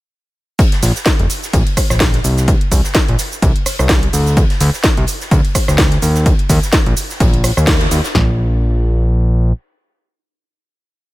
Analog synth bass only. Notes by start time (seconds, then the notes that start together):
0.83 A#1
1.19 F1
1.53 A#1
1.90 A#1
2.24 C2
2.72 C2
3.08 A#1
3.42 C2
3.79 C2
4.13 D2
4.61 D2
4.97 C2
5.31 D2
5.68 D2
6.02 D#2
6.50 D#2
6.86 A#1
7.20 A#1
7.57 D#2
7.91 D#2
8.15 A#1